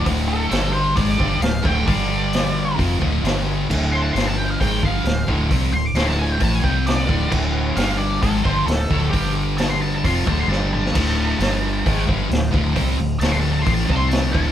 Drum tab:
CC |----------------|----------------|x---------------|----------------|
HH |o---o---o---o---|o---o---o---o---|----o---o---o---|o---o---o---o---|
SD |----o-------o---|----o-------o---|----o-------o---|----o-------o---|
T2 |----------------|----------------|----------------|----------------|
BD |o-------o-o---o-|o-------o-o-----|o-------o-o---o-|o-------o-o---o-|

CC |x---------------|----------------|x---------------|----------------|
HH |----o---o---o---|o---o---o-------|o---o---o---o---|o---o---o---o---|
SD |----o-------o---|----o-------o--o|----o-------o---|----o-------o---|
T2 |----------------|--------------o-|----------------|----------------|
BD |o-------o-o---o-|o-------o-o-----|o-------o-o---o-|o-------o-o---o-|